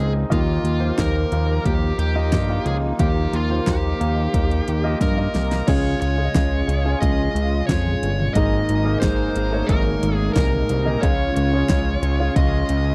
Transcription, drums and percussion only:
0.32 kick, closed hi-hat
0.65 closed hi-hat
0.98 kick, snare, closed hi-hat
1.32 closed hi-hat
1.65 kick, closed hi-hat
1.99 closed hi-hat
2.32 kick, snare, closed hi-hat
2.66 closed hi-hat
2.99 kick, closed hi-hat
3.33 closed hi-hat
3.67 kick, snare, closed hi-hat
4.01 closed hi-hat
4.34 kick, closed hi-hat
4.51 closed hi-hat
4.68 closed hi-hat
5.01 kick, snare, closed hi-hat
5.35 snare, closed hi-hat
5.51 snare, closed hi-hat
5.68 kick, closed hi-hat, crash
6.02 closed hi-hat
6.35 kick, snare, closed hi-hat
6.69 closed hi-hat
7.02 kick, closed hi-hat
7.36 closed hi-hat
7.69 kick, snare, closed hi-hat
7.87 floor tom
8.03 closed hi-hat
8.20 floor tom
8.35 kick, closed hi-hat
8.69 closed hi-hat
9.02 kick, snare, closed hi-hat
9.36 closed hi-hat
9.69 kick, closed hi-hat
10.03 closed hi-hat
10.36 kick, snare, closed hi-hat
10.53 floor tom
10.69 closed hi-hat
10.86 floor tom
11.03 kick, closed hi-hat
11.36 closed hi-hat
11.69 kick, snare, closed hi-hat
12.03 closed hi-hat
12.36 kick, closed hi-hat
12.69 closed hi-hat

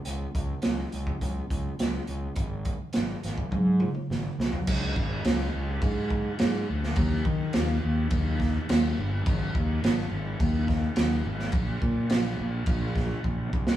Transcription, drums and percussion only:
0.05 closed hi-hat
0.35 kick, closed hi-hat
0.62 snare, closed hi-hat
0.92 closed hi-hat
1.07 kick
1.21 kick, closed hi-hat
1.50 kick, closed hi-hat
1.79 snare, closed hi-hat
2.07 closed hi-hat
2.36 kick, closed hi-hat
2.65 kick, closed hi-hat
2.93 snare, closed hi-hat
3.23 snare, closed hi-hat
3.38 kick
3.51 kick, high tom
3.80 mid tom
3.95 mid tom
4.11 snare
4.40 snare
4.53 floor tom
4.67 kick, crash
4.96 kick
5.24 snare, crash
5.82 kick, crash
6.10 kick
6.39 snare, crash
6.83 snare
6.96 kick, crash
7.25 kick
7.53 snare, crash
8.10 kick, crash
8.40 kick, snare
8.69 snare, crash
9.26 kick, crash
9.55 kick
9.84 snare, crash
10.40 kick, crash
10.68 kick, snare
10.96 snare, crash
11.39 snare
11.52 kick, crash
11.82 kick
12.10 snare, crash
12.66 kick, crash
12.96 kick, snare
13.24 kick
13.53 kick
13.67 snare

